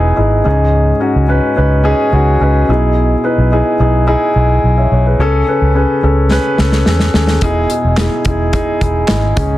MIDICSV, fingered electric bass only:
0, 0, Header, 1, 2, 480
1, 0, Start_track
1, 0, Key_signature, 4, "major"
1, 0, Tempo, 557103
1, 634, Time_signature, 4, 2, 24, 8
1, 8253, End_track
2, 0, Start_track
2, 0, Title_t, "Fingered electric bass"
2, 0, Program_c, 0, 33
2, 0, Note_on_c, 0, 28, 76
2, 111, Note_off_c, 0, 28, 0
2, 155, Note_on_c, 0, 32, 63
2, 351, Note_off_c, 0, 32, 0
2, 395, Note_on_c, 0, 37, 78
2, 789, Note_off_c, 0, 37, 0
2, 997, Note_on_c, 0, 37, 75
2, 1193, Note_off_c, 0, 37, 0
2, 1360, Note_on_c, 0, 37, 74
2, 1653, Note_off_c, 0, 37, 0
2, 1832, Note_on_c, 0, 37, 82
2, 2030, Note_off_c, 0, 37, 0
2, 2072, Note_on_c, 0, 37, 68
2, 2270, Note_off_c, 0, 37, 0
2, 2314, Note_on_c, 0, 35, 74
2, 2708, Note_off_c, 0, 35, 0
2, 2912, Note_on_c, 0, 35, 74
2, 3110, Note_off_c, 0, 35, 0
2, 3272, Note_on_c, 0, 35, 82
2, 3568, Note_off_c, 0, 35, 0
2, 3753, Note_on_c, 0, 35, 84
2, 3950, Note_off_c, 0, 35, 0
2, 3994, Note_on_c, 0, 35, 73
2, 4191, Note_off_c, 0, 35, 0
2, 4235, Note_on_c, 0, 35, 68
2, 4432, Note_off_c, 0, 35, 0
2, 4471, Note_on_c, 0, 37, 82
2, 4669, Note_off_c, 0, 37, 0
2, 4838, Note_on_c, 0, 37, 77
2, 5033, Note_off_c, 0, 37, 0
2, 5198, Note_on_c, 0, 37, 82
2, 5492, Note_off_c, 0, 37, 0
2, 5677, Note_on_c, 0, 37, 75
2, 5873, Note_off_c, 0, 37, 0
2, 5913, Note_on_c, 0, 40, 67
2, 6110, Note_off_c, 0, 40, 0
2, 6153, Note_on_c, 0, 39, 72
2, 6351, Note_off_c, 0, 39, 0
2, 6392, Note_on_c, 0, 28, 88
2, 6590, Note_off_c, 0, 28, 0
2, 6757, Note_on_c, 0, 28, 69
2, 6953, Note_off_c, 0, 28, 0
2, 7112, Note_on_c, 0, 28, 76
2, 7409, Note_off_c, 0, 28, 0
2, 7594, Note_on_c, 0, 28, 72
2, 7791, Note_off_c, 0, 28, 0
2, 7837, Note_on_c, 0, 32, 66
2, 8033, Note_off_c, 0, 32, 0
2, 8073, Note_on_c, 0, 37, 85
2, 8253, Note_off_c, 0, 37, 0
2, 8253, End_track
0, 0, End_of_file